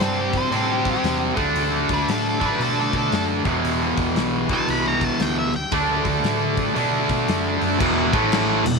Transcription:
Already playing: C3 G3 C4
0.00 G2 A4, snare, open hi-hat
0.21 G4
0.33 C5, kick, open hi-hat
0.51 A2 C3 G3 C4, open hi-hat
0.56 A4
0.72 G4
0.85 kick, open hi-hat
0.91 G4
1.03 E2, snare, open hi-hat
1.35 D2 D3 A3 D4, kick, open hi-hat
1.54 D2, open hi-hat
1.89 D2, kick, open hi-hat
1.94 B4
2.08 A2 A4, snare, open hi-hat
2.29 A4
2.40 D3 A3 D4, kick, open hi-hat
2.45 B4
2.59 B2, open hi-hat
2.63 A4
2.81 A4
2.93 B2, kick, open hi-hat
2.98 A4
3.12 F#2, snare, open hi-hat
3.44 E1 E2 B2 E3, kick, open hi-hat
3.63 E1, open hi-hat
3.97 E1, kick, open hi-hat
4.15 B1, snare, open hi-hat
4.49 E2 B2 E3, kick, open hi-hat
4.54 A5
4.67 C2 B5, open hi-hat
4.88 A#5
5.01 A5, kick, open hi-hat
5.20 D2 G5, snare, open hi-hat
5.38 E5
5.53 G5, open hi-hat
5.72 D2 D3 A3 D4, kick, open hi-hat
6.05 D2, kick, open hi-hat
6.23 A2, snare, open hi-hat
6.57 kick, open hi-hat
6.74 B2 D3 A3 D4, open hi-hat
7.09 B2, kick, open hi-hat
7.28 F#2, snare, open hi-hat
7.61 F#2, open hi-hat
7.79 E1 E2 B2 E3, kick, crash
8.13 A1 A2 E3 A3, kick, crash
8.32 snare, crash
8.64 E1 E2 B2, crash

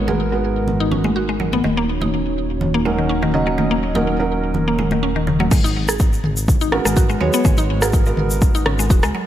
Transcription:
Already playing: G#1 G#3 B3 D#4 F#4 A#4
0.08 G#3 B3 F#4 G#4 A#4, high conga, low conga
0.32 G#3 B3 F#4 A#4
0.68 low conga
0.80 D#4
0.91 C#4, low conga
1.04 G#3, high conga
1.16 F#4
1.29 G#3
1.40 F#3, low conga
1.53 B3, high conga
1.64 D#1 D#3 A#3 C#4 D#4 F#4 C#5, high conga
1.77 A#3
2.01 D#4, high conga, low conga
2.61 low conga
2.74 A#3
2.85 F#3 G#3 C#4 D#4 A#4, high conga
2.98 D#3
3.09 C#4
3.22 D#3, high conga
3.34 C#3 F#3 C#4 D#4 D#5
3.47 F#3
3.58 D#3, high conga
3.71 A#3
3.95 F#3 C#4 D#4 A#4, high conga, low conga
4.19 F#3 C#4 D#4 A#4
4.54 high conga, low conga
4.68 A#3
4.79 G#3, low conga
4.91 D#3, high conga
5.03 C#4
5.16 D#3
5.27 C#3, low conga
5.40 F#3, high conga
5.51 G#1 G#3, kick, mid tom, crash, shaker
5.64 D#4, shaker
5.88 G#4, cross-stick, shaker
5.99 kick, shaker
6.13 shaker
6.24 G#1, mid tom
6.37 shaker
6.48 kick, mid tom, shaker
6.61 D#4, shaker
6.72 G#3 B3 C#4 F#4 A#4, cross-stick
6.85 G#1 G#3, cross-stick, shaker
6.96 F#4, kick, shaker
7.09 G#3, shaker
7.21 D#2 F#3 G#3 B3 F#4 C#5
7.33 B3, shaker
7.45 G#1 G#3, kick, mid tom, shaker
7.57 D#4, shaker
7.82 G#3 B3 F#4 G#4 A#4, cross-stick, shaker
7.93 kick, shaker
8.06 G#3 B3 F#4 A#4, shaker
8.17 G#1, mid tom
8.30 shaker
8.42 kick, shaker
8.55 D#4, shaker
8.66 C#4, cross-stick, mid tom
8.79 G#3, shaker
8.90 D#1 F#4, kick, shaker
9.03 C#2 G#3, cross-stick, shaker
9.15 F#3

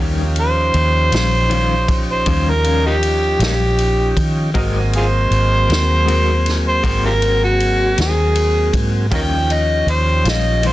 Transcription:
Already playing: D#3 F3 C#4 D#4 G4
0.00 D#2 G3 C#4 F4 G4 A#4 F5
0.36 ride
0.40 C5
0.74 D#2, ride
1.12 A#1 G3 C#4 F4, snare, ride
1.49 D#3 G3 C#4 F4, ride
1.88 kick, ride
2.12 C5
2.26 D#2 D#3 G3 C#4 F4, kick, ride
2.49 A#4
2.64 G3 C#4 F4, ride
2.86 A#3 D#4 G4
3.03 ride
3.39 A#1 G3 C#4 F4, snare, ride
3.45 A#3 D#4 G4
3.78 ride
4.17 D#3, kick, ride
4.54 G#1 F#3 G#3 A#3 C4 F#4 G#4 A#4 C5 D#5, kick, ride
4.93 F4 G#4 C5, ride
5.31 G#1, ride
5.67 D#2 C4 F#4 A#4, ride
5.72 snare
6.06 G#3 C4 F#4 A#4, ride
6.46 snare, ride
6.69 C5
6.83 G#1 G#3 C4 F#4 A#4, kick, ride
7.06 F4 G4 A#4
7.22 C4 F#4 A#4, ride
7.44 F#4
7.60 ride
7.98 D#2 C4 F#4 G#4 A#4, snare, ride
8.35 ride
8.73 G#2, kick, ride
9.11 D#2 D#3 F3 G3 C#4 D#4 F4 G4 A#4, kick, ride
9.15 A#4 D#5 G5
9.50 D#5, ride
9.87 D#2, ride
9.91 C5
10.24 A#1 G3 C#4 F4, snare, ride
10.29 D#5
10.63 D#3 G3 C#4 F4, ride
10.67 C5

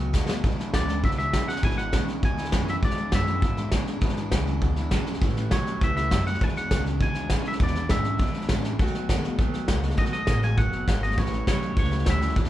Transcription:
Already playing: B2 F#3
0.00 A3 B3 F#4
0.13 D#2 B2 D#3 G#3 A3 B3 F#4, kick, snare, hi-hat pedal
0.29 A3 B3 F#4, snare
0.44 B1 E2 B2 E3 G#3 D4 E4, kick, snare
0.52 snare
0.58 E3 G#3 D4 E4, snare
0.74 D2 E2 B2 C#3 E3 G#3 D4 E4 D5, kick, snare, hi-hat pedal
0.89 E3 G#3 D4 E4, snare
1.03 C#2 E2 B2 E3 G#3 D4 E4 E5, kick, snare
1.11 snare
1.18 E3 G#3 D4 E4 E5, snare
1.33 B1 E2 B2 C#3 E3 G#3 D4 E4, kick, snare, hi-hat pedal
1.48 E3 G#3 D4 E4 F#5, snare
1.56 snare
1.63 G#1 E2 B2 E3 G#3 D4 E4 G#5, kick, snare
1.71 snare
1.78 E3 G#3 D4 E4 F#5, snare
1.92 B1 E2 B2 C#3 E3 G#3 D4 E4, kick, snare, hi-hat pedal
2.07 E3 G#3 D4 E4, snare
2.23 D2 E2 B2 E3 G#3 D4 E4 G#5, kick, snare
2.37 E3 G#3 D4 E4, snare
2.45 snare
2.52 E2 F#2 B2 C#3 E3 G#3 D4 E4, kick, snare, hi-hat pedal
2.68 E3 G#3 D4 E4 E5, snare
2.82 E2 B2 E3 G#3 D4 E4 D5, kick, snare
2.90 snare
2.97 E3 G#3 D4 E4, snare
3.12 E2 F#2 B2 C#3 E3 G#3 D4 E4 E5, kick, snare, hi-hat pedal
3.27 E3 G#3 D4 E4, snare
3.42 E2 G#2 B2 E3 G#3 D4 E4, kick, snare
3.57 E3 G#3 D4 E4, snare
3.71 E2 B2 C#3 E3 G#3 D4 E4, kick, snare, hi-hat pedal
3.87 E3 G#3 D4 E4, snare
4.01 E2 G#2 B2 E3 G#3 D4 E4, kick, snare
4.09 snare
4.17 E3 G#3 D4 E4, snare
4.31 C#2 E2 B2 C#3 E3 G#3 D4 E4, kick, snare, hi-hat pedal
4.47 E3 G#3 D4 E4, snare
4.62 D2 E2 B2 E3 G#3 D4 E4, kick, snare
4.76 E3 G#3 D4 E4, snare
4.91 B1 E2 B2 C#3 E3 G#3 D4 E4, kick, snare, hi-hat pedal
5.06 E3 G#3 D4 E4, snare
5.14 snare
5.21 A1 A2 E3 G3 C#4 E4, kick, snare
5.29 snare
5.37 G3 C#4 E4, snare
5.51 B1 A2 E3 F#3 G3 C#4 E4 C#5, kick, snare, hi-hat pedal
5.66 G3 C#4 E4, snare
5.81 C#2 A2 E3 G3 C#4 E4 E5, kick, snare
5.96 G3 C#4 E4 E5, snare
6.10 F#2 A2 E3 F#3 G3 C#4 E4, kick, snare, hi-hat pedal
6.26 G3 C#4 E4 F#5, snare
6.34 snare
6.40 E2 B2 E3 G#3 D4 E4 G#5, kick, snare
6.49 snare
6.56 E3 G#3 D4 E4 F#5, snare
6.71 C#2 E2 B2 C#3 E3 G#3 D4 E4, kick, snare, hi-hat pedal
6.86 E3 G#3 D4 E4, snare
7.00 D2 E2 B2 E3 G#3 D4 E4 G#5, kick, snare
7.15 E3 G#3 D4 E4, snare
7.30 B1 E2 B2 C#3 E3 G#3 D4 E4, kick, snare, hi-hat pedal
7.45 E3 G#3 D4 E4 E5, snare
7.52 snare
7.59 E2 B2 E3 G#3 D4 E4, kick, snare
7.63 D5, snare
7.75 E3 G#3 D4 E4, snare
7.89 E2 G#2 B2 C#3 E3 G#3 D4 E4 E5, kick, snare, hi-hat pedal
8.04 E3 G#3 D4 E4, snare
8.19 E2 B2 E3 G#3 D4 E4, kick, snare
8.26 snare
8.34 E3 G#3 D4 E4, snare
8.41 snare
8.49 E2 A2 B2 C#3 E3 G#3 D4 E4, kick, snare, hi-hat pedal
8.64 E3 G#3 D4 E4, snare
8.79 B2 D#3 F#3 A3 B3 F#4, kick, snare
8.87 snare
8.94 A3 B3 F#4, snare
9.09 F#2 B2 D#3 G#3 A3 B3 F#4, kick, snare, hi-hat pedal
9.24 A3 B3 F#4, muted upright bass stroke, snare
9.38 D#2 B2 D#3 F#3 A3 B3, kick, snare
9.43 F#4
9.54 A3 B3 F#4, muted upright bass stroke, snare
9.68 C#2 B2 D#3 G#3 A3 B3 F#4, kick, snare, hi-hat pedal
9.83 A3 B3 F#4, snare
9.90 snare
9.97 B1 B2 D#3 F#3 A3 B3 F#4 D#5, kick, snare
10.05 snare
10.13 A3 B3 F#4 D#5, snare
10.27 A1 B2 D#3 G#3 A3 B3 F#4, kick, snare, hi-hat pedal
10.42 A3 B3 F#4 G#5, snare
10.58 F#1 B2 D#3 F#3 A3 B3 F#4 F#5, kick, snare
10.72 A3 B3 F#4, snare
10.88 G#1 B2 D#3 G#3 A3 B3 F#4, kick, snare, hi-hat pedal
11.03 A3 B3 F#4 D#5, snare
11.11 snare
11.18 A1 A2 E3 G3 C#4 E4 C#5, kick, snare
11.26 snare
11.33 G3 C#4 E4, snare
11.47 B1 A2 E3 F#3 G3 C#4 E4 C#5, kick, snare, hi-hat pedal
11.62 G3 C#4 E4, snare
11.76 C#2 A2 E3 G3 C#4 E4 C#5, kick, snare
11.85 snare
11.91 G3 C#4 E4, snare
11.99 snare
12.06 D2 A2 E3 F#3 G3 C#4 E4 E5, kick, snare, hi-hat pedal
12.21 G3 C#4 E4, snare
12.29 snare
12.36 E2 B2 E3 G#3 D4 E4, kick, snare
12.44 snare

